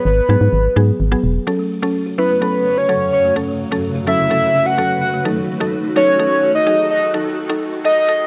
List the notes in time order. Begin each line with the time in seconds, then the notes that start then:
0.05 G#1 B4
0.29 G#2 F#3 B3 G#4
0.41 G#2
0.53 G#1
0.76 G#2 F#3 B3 G#4
1.00 G#1
1.12 F#3 B3 G#4
1.24 E1
1.47 F#2 C#3 F#3 A3 C#4 F#4 A4 C#5
1.59 A3
1.82 F#3 C#4 F#4 A4
2.06 F#4
2.18 F#3 C#4 E4 B4
2.30 A3
2.41 F#3 C#4 A4
2.65 C#4
2.77 F#4 C#5
2.89 F#3 C#4 A4 F#5
3.13 C#5
3.24 A3
3.36 F#3 C#4 A4 B4
3.48 A3
3.72 F#3 C#4 F#4 A4
3.95 F#4
4.07 F#3 C#4 A4 E5
4.19 A3
4.30 F#3 C#4 A4
4.54 C#4
4.66 F#4 F#5
4.78 F#3 C#4 A4 F#5
5.01 F#5
5.13 A3
5.25 D#2 D#3 F#3 D#4 A4
5.37 F#3
5.60 F#3 D#4 A4
5.84 D#4
5.96 F#3 D#4 A4 C#5
6.08 F#3
6.19 F#3 D#4 A4
6.43 A3
6.55 D#4 D#5
6.66 F#3 D#4 F#4 G#4
6.90 D#5
7.02 F#3
7.14 D#3 F#3 D#4 G#4 A4
7.26 F#3
7.49 F#3 D#4 A4
7.73 D#4
7.84 F#3 D#4 A4 D#5
7.97 F#3
8.08 F#3 D#4 A4